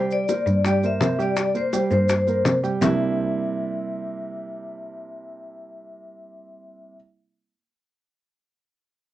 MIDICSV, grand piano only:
0, 0, Header, 1, 2, 480
1, 0, Start_track
1, 0, Tempo, 361228
1, 1823, Time_signature, 4, 2, 24, 8
1, 12133, End_track
2, 0, Start_track
2, 0, Title_t, "Grand piano"
2, 0, Program_c, 0, 0
2, 0, Note_on_c, 0, 55, 86
2, 0, Note_on_c, 0, 67, 92
2, 0, Note_on_c, 0, 79, 85
2, 300, Note_off_c, 0, 55, 0
2, 301, Note_off_c, 0, 67, 0
2, 305, Note_off_c, 0, 79, 0
2, 389, Note_on_c, 0, 70, 74
2, 390, Note_on_c, 0, 58, 72
2, 398, Note_on_c, 0, 72, 69
2, 780, Note_off_c, 0, 58, 0
2, 780, Note_off_c, 0, 70, 0
2, 785, Note_off_c, 0, 72, 0
2, 874, Note_on_c, 0, 55, 80
2, 874, Note_on_c, 0, 67, 91
2, 884, Note_on_c, 0, 79, 82
2, 1066, Note_off_c, 0, 55, 0
2, 1066, Note_off_c, 0, 67, 0
2, 1072, Note_off_c, 0, 79, 0
2, 1105, Note_on_c, 0, 58, 68
2, 1114, Note_on_c, 0, 72, 73
2, 1115, Note_on_c, 0, 70, 71
2, 1301, Note_off_c, 0, 58, 0
2, 1306, Note_off_c, 0, 70, 0
2, 1306, Note_off_c, 0, 72, 0
2, 1331, Note_on_c, 0, 58, 67
2, 1340, Note_on_c, 0, 70, 67
2, 1344, Note_on_c, 0, 72, 81
2, 1533, Note_off_c, 0, 58, 0
2, 1538, Note_off_c, 0, 70, 0
2, 1540, Note_off_c, 0, 72, 0
2, 1576, Note_on_c, 0, 67, 91
2, 1578, Note_on_c, 0, 55, 82
2, 1587, Note_on_c, 0, 79, 77
2, 1973, Note_off_c, 0, 67, 0
2, 1974, Note_off_c, 0, 55, 0
2, 1979, Note_off_c, 0, 79, 0
2, 2049, Note_on_c, 0, 58, 78
2, 2056, Note_on_c, 0, 70, 74
2, 2064, Note_on_c, 0, 72, 75
2, 2251, Note_off_c, 0, 58, 0
2, 2256, Note_off_c, 0, 70, 0
2, 2260, Note_off_c, 0, 72, 0
2, 2301, Note_on_c, 0, 55, 85
2, 2302, Note_on_c, 0, 67, 78
2, 2308, Note_on_c, 0, 79, 81
2, 2499, Note_off_c, 0, 55, 0
2, 2499, Note_off_c, 0, 67, 0
2, 2503, Note_off_c, 0, 79, 0
2, 2526, Note_on_c, 0, 58, 73
2, 2537, Note_on_c, 0, 70, 68
2, 2538, Note_on_c, 0, 72, 74
2, 2926, Note_off_c, 0, 58, 0
2, 2933, Note_off_c, 0, 70, 0
2, 2933, Note_off_c, 0, 72, 0
2, 3020, Note_on_c, 0, 58, 75
2, 3025, Note_on_c, 0, 72, 70
2, 3026, Note_on_c, 0, 70, 76
2, 3415, Note_off_c, 0, 58, 0
2, 3418, Note_off_c, 0, 70, 0
2, 3418, Note_off_c, 0, 72, 0
2, 3497, Note_on_c, 0, 55, 79
2, 3502, Note_on_c, 0, 67, 76
2, 3505, Note_on_c, 0, 79, 84
2, 3696, Note_off_c, 0, 55, 0
2, 3699, Note_off_c, 0, 67, 0
2, 3701, Note_off_c, 0, 79, 0
2, 3734, Note_on_c, 0, 48, 96
2, 3735, Note_on_c, 0, 55, 87
2, 3736, Note_on_c, 0, 58, 88
2, 3743, Note_on_c, 0, 60, 85
2, 3746, Note_on_c, 0, 62, 83
2, 3749, Note_on_c, 0, 64, 109
2, 9234, Note_off_c, 0, 48, 0
2, 9235, Note_off_c, 0, 55, 0
2, 9236, Note_off_c, 0, 58, 0
2, 9243, Note_off_c, 0, 60, 0
2, 9246, Note_off_c, 0, 62, 0
2, 9249, Note_off_c, 0, 64, 0
2, 12133, End_track
0, 0, End_of_file